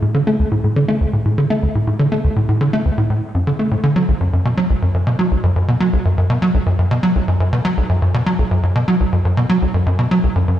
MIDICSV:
0, 0, Header, 1, 2, 480
1, 0, Start_track
1, 0, Tempo, 491803
1, 24, Time_signature, 4, 2, 24, 8
1, 10343, End_track
2, 0, Start_track
2, 0, Title_t, "Analog synth bass"
2, 0, Program_c, 0, 38
2, 21, Note_on_c, 0, 45, 78
2, 134, Note_off_c, 0, 45, 0
2, 140, Note_on_c, 0, 50, 96
2, 227, Note_off_c, 0, 50, 0
2, 263, Note_on_c, 0, 57, 99
2, 348, Note_off_c, 0, 57, 0
2, 384, Note_on_c, 0, 38, 70
2, 435, Note_off_c, 0, 38, 0
2, 502, Note_on_c, 0, 45, 76
2, 617, Note_off_c, 0, 45, 0
2, 623, Note_on_c, 0, 45, 76
2, 738, Note_off_c, 0, 45, 0
2, 743, Note_on_c, 0, 50, 99
2, 829, Note_off_c, 0, 50, 0
2, 861, Note_on_c, 0, 57, 96
2, 948, Note_off_c, 0, 57, 0
2, 981, Note_on_c, 0, 38, 77
2, 1034, Note_off_c, 0, 38, 0
2, 1104, Note_on_c, 0, 45, 71
2, 1218, Note_off_c, 0, 45, 0
2, 1224, Note_on_c, 0, 45, 72
2, 1338, Note_off_c, 0, 45, 0
2, 1345, Note_on_c, 0, 50, 95
2, 1430, Note_off_c, 0, 50, 0
2, 1465, Note_on_c, 0, 57, 99
2, 1550, Note_off_c, 0, 57, 0
2, 1587, Note_on_c, 0, 38, 73
2, 1636, Note_off_c, 0, 38, 0
2, 1709, Note_on_c, 0, 45, 73
2, 1821, Note_off_c, 0, 45, 0
2, 1826, Note_on_c, 0, 45, 73
2, 1939, Note_off_c, 0, 45, 0
2, 1944, Note_on_c, 0, 50, 99
2, 2029, Note_off_c, 0, 50, 0
2, 2066, Note_on_c, 0, 57, 93
2, 2150, Note_off_c, 0, 57, 0
2, 2186, Note_on_c, 0, 38, 73
2, 2236, Note_off_c, 0, 38, 0
2, 2306, Note_on_c, 0, 45, 73
2, 2419, Note_off_c, 0, 45, 0
2, 2427, Note_on_c, 0, 45, 77
2, 2539, Note_off_c, 0, 45, 0
2, 2544, Note_on_c, 0, 50, 96
2, 2629, Note_off_c, 0, 50, 0
2, 2665, Note_on_c, 0, 57, 96
2, 2750, Note_off_c, 0, 57, 0
2, 2784, Note_on_c, 0, 38, 71
2, 2835, Note_off_c, 0, 38, 0
2, 2905, Note_on_c, 0, 45, 79
2, 3019, Note_off_c, 0, 45, 0
2, 3024, Note_on_c, 0, 45, 72
2, 3138, Note_off_c, 0, 45, 0
2, 3265, Note_on_c, 0, 42, 73
2, 3379, Note_off_c, 0, 42, 0
2, 3386, Note_on_c, 0, 50, 80
2, 3436, Note_off_c, 0, 50, 0
2, 3505, Note_on_c, 0, 57, 73
2, 3590, Note_off_c, 0, 57, 0
2, 3623, Note_on_c, 0, 45, 73
2, 3675, Note_off_c, 0, 45, 0
2, 3742, Note_on_c, 0, 50, 96
2, 3857, Note_off_c, 0, 50, 0
2, 3863, Note_on_c, 0, 54, 94
2, 3949, Note_off_c, 0, 54, 0
2, 3985, Note_on_c, 0, 35, 74
2, 4036, Note_off_c, 0, 35, 0
2, 4104, Note_on_c, 0, 42, 73
2, 4218, Note_off_c, 0, 42, 0
2, 4227, Note_on_c, 0, 42, 74
2, 4339, Note_off_c, 0, 42, 0
2, 4346, Note_on_c, 0, 47, 98
2, 4430, Note_off_c, 0, 47, 0
2, 4464, Note_on_c, 0, 54, 99
2, 4549, Note_off_c, 0, 54, 0
2, 4584, Note_on_c, 0, 35, 72
2, 4635, Note_off_c, 0, 35, 0
2, 4705, Note_on_c, 0, 42, 72
2, 4819, Note_off_c, 0, 42, 0
2, 4825, Note_on_c, 0, 42, 79
2, 4939, Note_off_c, 0, 42, 0
2, 4945, Note_on_c, 0, 47, 97
2, 5029, Note_off_c, 0, 47, 0
2, 5064, Note_on_c, 0, 54, 98
2, 5149, Note_off_c, 0, 54, 0
2, 5184, Note_on_c, 0, 35, 72
2, 5235, Note_off_c, 0, 35, 0
2, 5303, Note_on_c, 0, 42, 82
2, 5418, Note_off_c, 0, 42, 0
2, 5425, Note_on_c, 0, 42, 73
2, 5539, Note_off_c, 0, 42, 0
2, 5546, Note_on_c, 0, 47, 97
2, 5630, Note_off_c, 0, 47, 0
2, 5664, Note_on_c, 0, 54, 98
2, 5749, Note_off_c, 0, 54, 0
2, 5786, Note_on_c, 0, 35, 81
2, 5836, Note_off_c, 0, 35, 0
2, 5906, Note_on_c, 0, 42, 72
2, 6019, Note_off_c, 0, 42, 0
2, 6028, Note_on_c, 0, 42, 74
2, 6140, Note_off_c, 0, 42, 0
2, 6146, Note_on_c, 0, 47, 97
2, 6230, Note_off_c, 0, 47, 0
2, 6265, Note_on_c, 0, 54, 96
2, 6350, Note_off_c, 0, 54, 0
2, 6383, Note_on_c, 0, 35, 74
2, 6434, Note_off_c, 0, 35, 0
2, 6502, Note_on_c, 0, 42, 75
2, 6617, Note_off_c, 0, 42, 0
2, 6624, Note_on_c, 0, 42, 72
2, 6738, Note_off_c, 0, 42, 0
2, 6743, Note_on_c, 0, 47, 98
2, 6829, Note_off_c, 0, 47, 0
2, 6861, Note_on_c, 0, 54, 98
2, 6947, Note_off_c, 0, 54, 0
2, 6983, Note_on_c, 0, 35, 75
2, 7034, Note_off_c, 0, 35, 0
2, 7103, Note_on_c, 0, 42, 73
2, 7218, Note_off_c, 0, 42, 0
2, 7222, Note_on_c, 0, 42, 83
2, 7337, Note_off_c, 0, 42, 0
2, 7345, Note_on_c, 0, 47, 96
2, 7430, Note_off_c, 0, 47, 0
2, 7463, Note_on_c, 0, 54, 101
2, 7549, Note_off_c, 0, 54, 0
2, 7585, Note_on_c, 0, 35, 74
2, 7636, Note_off_c, 0, 35, 0
2, 7704, Note_on_c, 0, 42, 78
2, 7818, Note_off_c, 0, 42, 0
2, 7826, Note_on_c, 0, 42, 75
2, 7939, Note_off_c, 0, 42, 0
2, 7947, Note_on_c, 0, 47, 98
2, 8031, Note_off_c, 0, 47, 0
2, 8065, Note_on_c, 0, 54, 94
2, 8149, Note_off_c, 0, 54, 0
2, 8184, Note_on_c, 0, 35, 77
2, 8235, Note_off_c, 0, 35, 0
2, 8305, Note_on_c, 0, 42, 73
2, 8419, Note_off_c, 0, 42, 0
2, 8425, Note_on_c, 0, 42, 73
2, 8538, Note_off_c, 0, 42, 0
2, 8544, Note_on_c, 0, 47, 96
2, 8629, Note_off_c, 0, 47, 0
2, 8664, Note_on_c, 0, 54, 96
2, 8749, Note_off_c, 0, 54, 0
2, 8785, Note_on_c, 0, 35, 74
2, 8836, Note_off_c, 0, 35, 0
2, 8906, Note_on_c, 0, 42, 75
2, 9019, Note_off_c, 0, 42, 0
2, 9027, Note_on_c, 0, 42, 75
2, 9139, Note_off_c, 0, 42, 0
2, 9146, Note_on_c, 0, 47, 101
2, 9230, Note_off_c, 0, 47, 0
2, 9266, Note_on_c, 0, 54, 100
2, 9350, Note_off_c, 0, 54, 0
2, 9387, Note_on_c, 0, 35, 75
2, 9436, Note_off_c, 0, 35, 0
2, 9505, Note_on_c, 0, 42, 74
2, 9619, Note_off_c, 0, 42, 0
2, 9626, Note_on_c, 0, 42, 82
2, 9740, Note_off_c, 0, 42, 0
2, 9746, Note_on_c, 0, 47, 98
2, 9830, Note_off_c, 0, 47, 0
2, 9868, Note_on_c, 0, 54, 97
2, 9951, Note_off_c, 0, 54, 0
2, 9988, Note_on_c, 0, 35, 74
2, 10037, Note_off_c, 0, 35, 0
2, 10106, Note_on_c, 0, 42, 80
2, 10219, Note_off_c, 0, 42, 0
2, 10226, Note_on_c, 0, 42, 76
2, 10339, Note_off_c, 0, 42, 0
2, 10343, End_track
0, 0, End_of_file